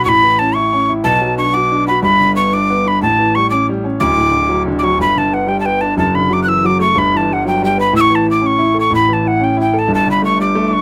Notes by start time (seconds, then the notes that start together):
0.05 A1 A2 B5 C#6
0.23 E3
0.39 C#4 A5
0.55 E4 C#6
0.73 C#4
0.89 E4
1.04 B1 B2 A5
1.21 F#3
1.38 D4 C#6
1.53 F#4 D6
1.72 D4
1.88 F#4 B5
2.02 G1 G2 B5
2.20 D3
2.36 B3 C#6
2.53 D4 D6
2.70 B3
2.86 D4 B5
3.02 A1 A2 A5
3.19 E3
3.35 G3 C#6
3.50 C#4 D6
3.69 G3
3.84 C#4
4.00 D1 D2 D6
4.17 A2
4.31 D3
4.49 F#3
4.67 D3
4.79 D6
4.83 F#3 C#6
4.99 G1 G2 B5
5.16 D3 A5
5.33 B3 F#5
5.47 G3 G5
5.60 A5
5.65 B3 G5
5.81 D4 A5
5.97 F#1 F#2 A5
6.15 D3 B5
6.30 F#3 D6
6.43 E3 F#6
6.49 E6
6.64 F#3 D6
6.79 A3 C#6
6.95 G1 G2 B5
7.14 E3 A5
7.30 G3 F#5
7.45 F#3 G5
7.62 G3 G5
7.78 B3 B5
7.93 A1 A2 E6
8.01 C#6
8.10 E3
8.15 A5
8.26 E4
8.31 D6
8.41 C#4
8.46 C#6
8.58 E4
8.74 A4
8.80 C#6
8.91 A1 A2
8.95 B5
9.09 E3
9.13 A5
9.25 E4 F#5
9.40 C#4
9.44 G5
9.57 E4
9.61 G5
9.74 A4
9.79 A5
9.88 G1 G2
9.95 A5
10.07 D3
10.11 B5
10.22 A3 C#6
10.39 G3 D6
10.55 A3
10.68 D4 D6
10.73 C#6